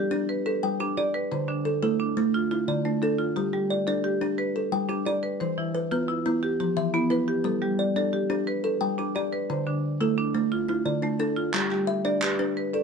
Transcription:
Already playing: marimba G4 A4, kalimba D5
0.11 kalimba D4 G4
0.29 marimba B4
0.46 kalimba A4, marimba B4
0.63 kalimba G3 G5
0.80 marimba D4, kalimba G4
0.97 kalimba G4 D5, marimba D5
1.14 marimba B4
1.32 kalimba D3, marimba C5
1.48 marimba D3 D4
1.65 kalimba A4
1.83 kalimba A3 A4, marimba E4
2.00 marimba D4
2.17 kalimba A3 D4
2.34 marimba F4
2.51 kalimba E4, marimba F4
2.68 kalimba D3 D5
2.85 marimba A3, kalimba D4
3.02 kalimba D4 A4, marimba A4
3.19 marimba F4
3.36 kalimba G3, marimba G4
3.53 marimba G3 G4
3.70 kalimba D5
3.87 kalimba D4 D5, marimba A4
4.04 marimba G4
4.21 kalimba D4 G4
4.38 marimba B4
4.56 kalimba A4
4.72 kalimba G3 G5
4.89 marimba D4, kalimba G4
5.05 kalimba G4 D5, marimba D5
5.23 marimba B4
5.40 kalimba E3, marimba C5
5.58 marimba E3 E4
5.75 kalimba B4
5.91 kalimba B3 B4, marimba F4
6.08 marimba E4
6.26 kalimba B3 E4
6.43 marimba G4
6.60 kalimba F3, marimba G4
6.77 kalimba E3 E5
6.94 marimba B3, kalimba E4
7.10 kalimba E4 B4, marimba B4
7.28 marimba G4
7.44 kalimba G3, marimba A4
7.62 marimba G3 G4
7.79 kalimba D5
7.96 kalimba D4 D5, marimba A4
8.13 marimba G4
8.30 kalimba D4 G4
8.47 marimba B4
8.64 kalimba A4, marimba B4
8.81 kalimba G3 G5
8.98 marimba D4, kalimba G4
9.15 kalimba G4 D5, marimba D5
9.33 marimba B4
9.50 kalimba D3, marimba C5
9.67 marimba D3 D4
10.01 kalimba A3 A4, marimba E4
10.18 marimba D4
10.34 kalimba A3 D4
10.52 marimba F4
10.69 kalimba E4, marimba F4
10.86 kalimba D3 D5
11.02 marimba A3, kalimba D4
11.20 kalimba D4 A4, marimba A4
11.37 marimba F4
11.53 kalimba G3, marimba G4, clap
11.71 marimba G3 G4, clap
11.87 kalimba E5
12.05 kalimba D4 D5, marimba D5
12.22 marimba G4 B4, clap
12.39 kalimba D4 B4
12.57 marimba B4
12.73 kalimba A4, marimba D5

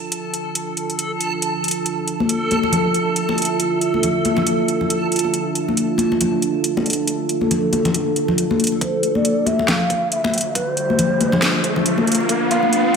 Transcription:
Already playing: ambient pad D4 F4 A5, synth texture A4
0.12 closed hi-hat
0.34 closed hi-hat
0.55 closed hi-hat
0.77 closed hi-hat
0.90 closed hi-hat
0.99 closed hi-hat
1.21 closed hi-hat
1.42 closed hi-hat
1.64 closed hi-hat
1.68 closed hi-hat
1.71 closed hi-hat
1.86 ambient pad E5, closed hi-hat
2.08 closed hi-hat
2.20 high conga
2.29 closed hi-hat
2.51 closed hi-hat, high conga
2.63 muted conga, high conga
2.72 closed hi-hat, low conga
2.94 closed hi-hat
3.16 closed hi-hat
3.29 muted conga
3.38 closed hi-hat
3.42 closed hi-hat
3.45 closed hi-hat
3.60 closed hi-hat
3.81 closed hi-hat
3.94 high conga
4.03 closed hi-hat, low conga
4.25 closed hi-hat, high conga
4.37 muted conga, high conga, low conga
4.47 closed hi-hat
4.68 closed hi-hat
4.81 low conga
4.90 closed hi-hat
5.12 closed hi-hat
5.16 closed hi-hat
5.19 closed hi-hat
5.24 muted conga
5.34 ambient pad A4, closed hi-hat
5.55 closed hi-hat
5.68 high conga
5.77 closed hi-hat
5.98 closed hi-hat, high conga
6.12 muted conga, high conga
6.21 closed hi-hat, low conga
6.42 closed hi-hat
6.64 closed hi-hat
6.77 muted conga
6.86 closed hi-hat
6.90 closed hi-hat
6.93 closed hi-hat
7.07 closed hi-hat
7.29 closed hi-hat
7.41 high conga
7.51 closed hi-hat, low conga
7.73 closed hi-hat, high conga
7.85 closed hi-hat, muted conga, high conga, low conga
7.94 closed hi-hat
8.16 closed hi-hat
8.28 low conga
8.38 closed hi-hat
8.51 high conga
8.60 closed hi-hat
8.64 closed hi-hat
8.67 closed hi-hat
8.72 muted conga
8.81 ambient pad D4 F4 D5, shakuhachi C5, kick, closed hi-hat, riser
9.03 closed hi-hat
9.15 shakuhachi D5, high conga
9.25 closed hi-hat
9.46 shakuhachi E5, closed hi-hat, high conga
9.59 muted conga, high conga
9.68 shakuhachi F5 G5, snare, closed hi-hat, low conga
9.90 kick, closed hi-hat
10.12 shakuhachi E5, closed hi-hat
10.24 kick, muted conga
10.34 closed hi-hat
10.38 closed hi-hat
10.41 closed hi-hat
10.55 shakuhachi B4, kick, closed hi-hat
10.71 shakuhachi C5
10.77 closed hi-hat
10.90 high conga
10.99 closed hi-hat, low conga
11.21 closed hi-hat, high conga
11.32 muted conga, high conga, low conga
11.42 snare, closed hi-hat
11.64 kick, closed hi-hat
11.76 low conga
11.86 closed hi-hat
11.98 high conga
12.07 closed hi-hat
12.12 closed hi-hat
12.15 closed hi-hat
12.20 muted conga
12.29 kick, closed hi-hat
12.51 shakuhachi F5, closed hi-hat
12.63 high conga
12.73 closed hi-hat

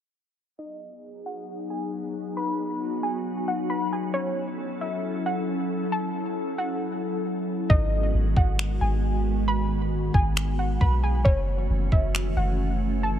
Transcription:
0.59 ambient pad F#3 B3 D#4 G#4, synth pluck D#5
1.26 synth pluck F#5
1.70 synth pluck G#5
2.37 ambient pad F#4, synth pluck B5
3.03 synth pluck G#5
3.48 synth pluck F#5
3.70 synth pluck B5
3.93 synth pluck G#5
4.14 ambient pad C#4 E4 A4, synth pluck C#5
4.81 synth pluck E5
5.26 synth pluck F#5
5.92 synth pluck A5
6.58 synth pluck F#5
7.70 808-style bass G#1, ambient pad D#3 G#3 B3 F#4, synth pluck D#5, kick
8.14 808-style bass G#1
8.36 808-style bass G#1, synth pluck F#5, kick
8.59 finger snap
8.81 808-style bass G#1, synth pluck G#5
9.48 synth pluck B5
10.14 808-style bass G#1, synth pluck G#5, kick
10.37 finger snap
10.59 synth pluck F#5
10.81 808-style bass B1, synth pluck B5, kick
11.04 synth pluck G#5
11.25 808-style bass F#1, ambient pad E3 A3 C#4, synth pluck C#5, kick
11.70 808-style bass F#1
11.92 808-style bass F#1, synth pluck E5, kick
12.15 finger snap
12.36 808-style bass F#1, synth pluck F#5
13.03 ambient pad G#3, synth pluck A5

